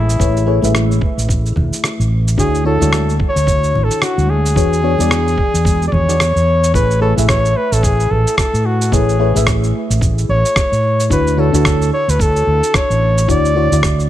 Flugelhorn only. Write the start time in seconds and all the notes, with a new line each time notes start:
Already playing: E4
2.39 G#4
2.66 A4
3.29 C#5
3.84 A4
4.03 F#4
4.30 G#4
5.88 D5
5.93 C#5
6.75 B4
7.02 A4
7.29 C#5
7.57 B4
7.73 A4
7.84 G#4
8.11 A4
8.38 A4
8.66 F#4
8.93 G#4
10.30 C#5
11.12 B4
11.40 A4
11.94 C#5
12.10 B4
12.21 A4
12.75 C#5
13.30 D5